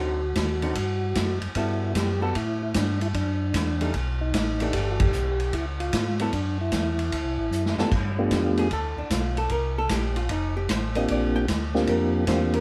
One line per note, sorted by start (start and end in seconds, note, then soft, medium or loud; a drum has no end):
0.00 0.34 D2 medium
0.00 0.20 D3 medium
0.00 0.20 F#3 medium
0.00 0.20 C4 medium
0.00 0.20 D#4 soft
0.00 1.39 F#4 medium
0.35 0.74 D#2 medium
0.35 kick soft
0.35 snare medium
0.35 hi-hat pedal soft
0.35 ride medium
0.62 0.74 D3 medium
0.62 0.75 F#3 medium
0.62 0.75 C4 medium
0.62 0.75 D#4 medium
0.62 ride soft
0.75 1.14 G2 medium
0.75 kick soft
0.75 ride medium
1.15 1.40 F#2 medium
1.15 kick soft
1.15 snare medium
1.15 hi-hat pedal medium
1.15 ride medium
1.41 1.48 F#2 soft
1.41 ride soft
1.55 1.94 G2 medium
1.55 2.17 G3 soft
1.55 2.17 B3 soft
1.55 1.93 E4 medium
1.55 2.17 F#4 medium
1.55 2.17 A4 medium
1.55 kick soft
1.55 ride medium
1.95 2.34 F#2 medium
1.95 2.20 G4 medium
1.95 kick soft
1.95 snare medium
1.95 hi-hat pedal medium
1.95 ride medium
2.21 2.33 G3 medium
2.21 2.34 B3 medium
2.21 2.34 F#4 medium
2.21 2.36 F#4 medium
2.21 2.34 A4 medium
2.35 2.74 A2 medium
2.35 2.62 E4 medium
2.35 kick soft
2.35 ride medium
2.63 2.76 E4 medium
2.74 3.13 G2 medium
2.74 3.00 D4 medium
2.74 kick soft
2.74 snare medium
2.74 hi-hat pedal medium
2.74 ride medium
3.01 3.08 E4 medium
3.01 ride soft
3.14 3.53 F#2 medium
3.14 3.90 D4 medium
3.14 kick soft
3.14 ride medium
3.54 3.93 E2 medium
3.54 kick soft
3.54 snare medium
3.54 hi-hat pedal medium
3.54 ride medium
3.81 3.93 G3 medium
3.81 3.93 A3 medium
3.81 3.94 D#4 medium
3.81 ride soft
3.94 4.33 B1 medium
3.94 kick soft
3.94 ride medium
4.21 4.34 D#4 medium
4.34 4.72 A1 medium
4.34 4.75 D#4 medium
4.34 kick soft
4.34 snare medium
4.34 hi-hat pedal medium
4.34 ride medium
4.60 5.11 E3 medium
4.60 5.11 A3 medium
4.60 5.12 D4 medium
4.60 5.12 G4 medium
4.60 ride soft
4.73 5.12 G1 medium
4.73 4.90 G4 medium
4.73 kick soft
4.73 ride medium
4.92 5.01 F#4 medium
5.00 5.55 G4 medium
5.00 kick medium
5.00 ride medium
5.12 5.51 B1 medium
5.12 hi-hat pedal soft
5.40 ride soft
5.53 5.92 C#2 medium
5.53 5.66 E4 medium
5.53 kick soft
5.53 ride medium
5.80 6.21 F4 medium
5.80 ride soft
5.93 6.31 G#2 medium
5.93 kick soft
5.93 snare medium
5.93 hi-hat pedal medium
5.93 ride medium
6.19 6.32 F#3 medium
6.19 6.32 B3 medium
6.19 6.33 E4 medium
6.19 6.32 E4 medium
6.19 6.32 A4 medium
6.19 ride soft
6.33 6.71 F#2 medium
6.33 6.58 D4 medium
6.33 kick soft
6.33 ride medium
6.61 7.75 E4 medium
6.72 7.11 E2 medium
6.72 kick soft
6.72 snare medium
6.72 hi-hat pedal medium
6.72 ride medium
6.99 ride soft
7.12 7.25 D2 medium
7.12 kick soft
7.12 ride medium
7.25 7.38 C2 soft
7.38 7.50 A1 medium
7.51 7.76 F#2 medium
7.51 hi-hat pedal medium
7.66 snare soft
7.77 7.84 F#2 soft
7.77 7.90 G3 medium
7.77 7.91 B3 medium
7.77 7.91 F4 medium
7.77 7.91 A4 medium
7.77 snare medium
7.91 8.30 G2 medium
7.91 kick medium
7.91 crash medium
8.18 8.68 A3 medium
8.18 8.69 B3 medium
8.18 8.69 D4 medium
8.18 8.69 F4 medium
8.18 8.69 G4 medium
8.31 8.70 F2 medium
8.31 kick soft
8.31 snare medium
8.31 hi-hat pedal soft
8.31 ride medium
8.57 8.71 G#4 medium
8.57 ride soft
8.71 8.95 D2 medium
8.71 8.98 A4 medium
8.71 kick soft
8.71 ride soft
8.96 9.03 D2 soft
8.96 9.11 D4 medium
9.10 9.49 B1 medium
9.10 9.37 F4 medium
9.10 kick soft
9.10 snare medium
9.10 hi-hat pedal medium
9.10 ride medium
9.37 9.50 A4 medium
9.37 ride soft
9.49 9.88 C2 medium
9.49 9.77 A#4 medium
9.49 kick soft
9.49 ride soft
9.78 9.90 A4 medium
9.89 10.28 A#1 medium
9.89 10.17 G4 medium
9.89 kick soft
9.89 snare medium
9.89 hi-hat pedal soft
9.89 ride medium
10.16 10.29 F4 medium
10.16 ride soft
10.29 10.68 F1 medium
10.29 10.56 D#4 medium
10.29 kick soft
10.29 ride medium
10.57 10.69 G4 medium
10.69 11.07 A1 medium
10.69 10.96 C5 medium
10.69 kick soft
10.69 snare medium
10.69 hi-hat pedal medium
10.69 ride medium
10.95 11.46 A#3 medium
10.95 11.46 C4 soft
10.95 11.46 D4 medium
10.95 11.46 F4 soft
10.95 11.46 G4 medium
10.95 11.09 D#5 loud
10.95 ride soft
11.08 11.47 A#1 medium
11.08 11.35 D5 medium
11.08 kick soft
11.08 ride medium
11.36 11.43 G5 loud
11.48 11.87 D2 medium
11.48 kick soft
11.48 snare medium
11.48 hi-hat pedal medium
11.48 ride medium
11.74 12.25 A#3 medium
11.74 12.25 C4 medium
11.74 12.25 D4 medium
11.74 12.25 F4 medium
11.74 12.25 G4 medium
11.74 snare soft
11.87 12.26 F2 medium
11.87 12.26 A#4 medium
11.87 kick soft
11.87 ride medium
12.27 12.60 E2 medium
12.27 12.60 A#3 medium
12.27 12.60 C4 medium
12.27 12.60 D4 medium
12.27 12.60 F4 medium
12.27 12.60 G4 medium
12.27 12.54 C5 medium
12.27 kick soft
12.27 snare medium
12.27 hi-hat pedal soft
12.27 ride medium
12.53 12.60 A#4 medium
12.53 ride soft